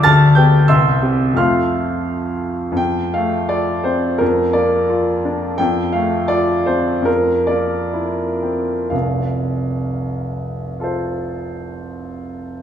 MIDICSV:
0, 0, Header, 1, 2, 480
1, 0, Start_track
1, 0, Key_signature, -1, "major"
1, 0, Tempo, 637620
1, 41, Time_signature, 2, 2, 24, 8
1, 521, Tempo, 691244
1, 1481, Tempo, 703400
1, 4361, Tempo, 771208
1, 4841, Tempo, 874636
1, 5321, Tempo, 981997
1, 5801, Tempo, 938967
1, 7692, End_track
2, 0, Start_track
2, 0, Title_t, "Grand piano"
2, 0, Program_c, 0, 0
2, 0, Control_c, 0, 64, 127
2, 26, Note_on_c, 0, 93, 99
2, 29, Note_on_c, 0, 89, 71
2, 33, Note_on_c, 0, 81, 80
2, 34, Note_on_c, 0, 38, 67
2, 55, Control_c, 0, 64, 0
2, 168, Control_c, 0, 64, 127
2, 256, Note_off_c, 0, 89, 0
2, 258, Note_off_c, 0, 81, 0
2, 265, Note_on_c, 0, 91, 71
2, 271, Note_off_c, 0, 93, 0
2, 274, Note_on_c, 0, 59, 43
2, 275, Note_on_c, 0, 79, 54
2, 277, Note_on_c, 0, 67, 47
2, 494, Note_off_c, 0, 59, 0
2, 496, Note_off_c, 0, 67, 0
2, 502, Note_off_c, 0, 79, 0
2, 504, Note_off_c, 0, 38, 0
2, 512, Note_on_c, 0, 88, 77
2, 514, Note_off_c, 0, 91, 0
2, 517, Note_on_c, 0, 84, 56
2, 519, Note_on_c, 0, 76, 56
2, 521, Note_on_c, 0, 36, 56
2, 536, Control_c, 0, 64, 0
2, 635, Control_c, 0, 64, 127
2, 750, Note_on_c, 0, 60, 36
2, 753, Note_on_c, 0, 67, 40
2, 966, Note_off_c, 0, 84, 0
2, 967, Note_off_c, 0, 76, 0
2, 967, Note_on_c, 0, 41, 40
2, 970, Note_off_c, 0, 60, 0
2, 971, Note_off_c, 0, 67, 0
2, 978, Note_on_c, 0, 57, 34
2, 981, Note_off_c, 0, 36, 0
2, 985, Note_on_c, 0, 60, 33
2, 989, Note_on_c, 0, 89, 56
2, 991, Note_off_c, 0, 88, 0
2, 992, Note_on_c, 0, 65, 32
2, 997, Note_on_c, 0, 77, 47
2, 998, Note_on_c, 0, 84, 46
2, 1008, Control_c, 0, 64, 0
2, 1133, Control_c, 0, 64, 127
2, 1454, Note_off_c, 0, 77, 0
2, 1455, Note_off_c, 0, 84, 0
2, 1478, Note_off_c, 0, 89, 0
2, 1910, Note_off_c, 0, 41, 0
2, 1920, Note_on_c, 0, 41, 45
2, 1931, Note_off_c, 0, 57, 0
2, 1934, Note_off_c, 0, 60, 0
2, 1937, Note_off_c, 0, 65, 0
2, 1954, Note_on_c, 0, 79, 76
2, 1981, Control_c, 0, 64, 0
2, 2087, Control_c, 0, 64, 127
2, 2206, Note_on_c, 0, 77, 57
2, 2208, Note_off_c, 0, 79, 0
2, 2219, Note_on_c, 0, 57, 36
2, 2445, Note_on_c, 0, 74, 63
2, 2453, Note_off_c, 0, 77, 0
2, 2457, Note_on_c, 0, 65, 38
2, 2602, Note_off_c, 0, 57, 0
2, 2685, Note_on_c, 0, 72, 49
2, 2690, Note_off_c, 0, 74, 0
2, 2692, Note_on_c, 0, 60, 36
2, 2839, Note_off_c, 0, 65, 0
2, 2884, Note_off_c, 0, 41, 0
2, 2920, Note_on_c, 0, 70, 63
2, 2929, Note_off_c, 0, 72, 0
2, 2933, Note_off_c, 0, 60, 0
2, 2933, Note_on_c, 0, 41, 49
2, 2950, Control_c, 0, 64, 0
2, 3075, Control_c, 0, 64, 127
2, 3158, Note_on_c, 0, 74, 60
2, 3165, Note_off_c, 0, 70, 0
2, 3166, Note_on_c, 0, 58, 36
2, 3402, Note_on_c, 0, 65, 39
2, 3544, Note_off_c, 0, 58, 0
2, 3649, Note_on_c, 0, 62, 37
2, 3780, Note_off_c, 0, 65, 0
2, 3848, Note_off_c, 0, 41, 0
2, 3869, Note_off_c, 0, 74, 0
2, 3872, Note_on_c, 0, 79, 81
2, 3880, Note_off_c, 0, 62, 0
2, 3881, Note_on_c, 0, 41, 49
2, 3890, Control_c, 0, 64, 0
2, 4007, Control_c, 0, 64, 127
2, 4108, Note_on_c, 0, 77, 55
2, 4113, Note_off_c, 0, 79, 0
2, 4121, Note_on_c, 0, 57, 36
2, 4351, Note_on_c, 0, 74, 69
2, 4357, Note_off_c, 0, 77, 0
2, 4363, Note_on_c, 0, 65, 39
2, 4501, Note_off_c, 0, 57, 0
2, 4589, Note_off_c, 0, 74, 0
2, 4589, Note_on_c, 0, 72, 50
2, 4596, Note_on_c, 0, 60, 35
2, 4741, Note_off_c, 0, 65, 0
2, 4802, Note_off_c, 0, 41, 0
2, 4811, Note_on_c, 0, 41, 45
2, 4832, Note_on_c, 0, 70, 62
2, 4837, Note_off_c, 0, 72, 0
2, 4841, Note_off_c, 0, 60, 0
2, 4854, Control_c, 0, 64, 0
2, 4959, Control_c, 0, 64, 127
2, 5062, Note_on_c, 0, 74, 54
2, 5068, Note_off_c, 0, 70, 0
2, 5071, Note_on_c, 0, 58, 33
2, 5316, Note_on_c, 0, 64, 32
2, 5461, Note_off_c, 0, 58, 0
2, 5560, Note_on_c, 0, 60, 27
2, 5705, Note_off_c, 0, 64, 0
2, 5769, Note_off_c, 0, 41, 0
2, 5789, Note_on_c, 0, 77, 37
2, 5796, Note_off_c, 0, 74, 0
2, 5796, Note_on_c, 0, 29, 30
2, 5797, Note_on_c, 0, 36, 31
2, 5799, Note_off_c, 0, 60, 0
2, 5814, Control_c, 0, 64, 0
2, 5941, Control_c, 0, 64, 127
2, 6758, Note_on_c, 0, 65, 26
2, 6766, Note_on_c, 0, 69, 28
2, 6778, Note_on_c, 0, 72, 26
2, 7638, Note_off_c, 0, 77, 0
2, 7644, Note_off_c, 0, 29, 0
2, 7646, Note_off_c, 0, 36, 0
2, 7692, Note_off_c, 0, 65, 0
2, 7692, Note_off_c, 0, 69, 0
2, 7692, Note_off_c, 0, 72, 0
2, 7692, End_track
0, 0, End_of_file